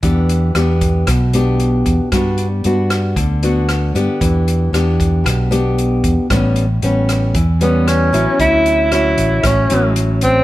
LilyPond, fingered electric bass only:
\new Staff \with { instrumentName = "Fingered electric bass" } { \clef bass \time 4/4 \key d \major \tempo 4 = 115 e,4 e,4 b,,4. e,16 r16 | g,4 g,4 d,4. g,16 r16 | e,4 e,4 b,,4. e,16 r16 | a,,4 a,,4 e,4. a,,16 r16 |
d,4. a,,8 a,,8 a,,4. | }